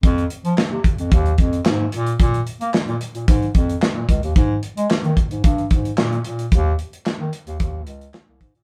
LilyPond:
<<
  \new Staff \with { instrumentName = "Bass clarinet" } { \clef bass \time 4/4 \key f \minor \tempo 4 = 111 f,8 r16 f16 r16 c16 r16 f,16 ees,8 f,8 aes,8 bes,8 | bes,8 r16 bes16 r16 bes,16 r16 bes,16 aes,8 f,8 r16 bes,16 des,16 ees,16 | aes,8 r16 aes16 r16 ees16 r16 aes,16 g,8 aes,8 bes,8 bes,8 | ees,8 r8. ees16 r16 ees,16 ees,8 des,8 r16 c,16 aes,16 bes,16 | }
  \new DrumStaff \with { instrumentName = "Drums" } \drummode { \time 4/4 <hh bd>16 hh16 hh16 hh16 <hc sn>8 <hh bd>16 hh16 <hh bd>16 hh16 <hh bd>16 hh16 <hc sn>8 hh16 hh16 | <hh bd>16 hh16 hh16 hh16 <hc sn>16 hh16 hh16 hh16 <hh bd>16 hh16 <hh bd>16 hh16 <hc sn>8 <hh bd>16 hh16 | <hh bd>8 hh16 hh16 <hc sn>16 hh16 <hh bd>16 hh16 <hh bd>16 hh16 <hh bd>16 hh16 <hc sn>16 hh16 hh16 hh16 | <hh bd>8 hh16 hh16 <hc sn>8 hh16 hh16 <hh bd>8 hh16 hh16 <hc sn>8 <hh bd>16 hh16 | }
>>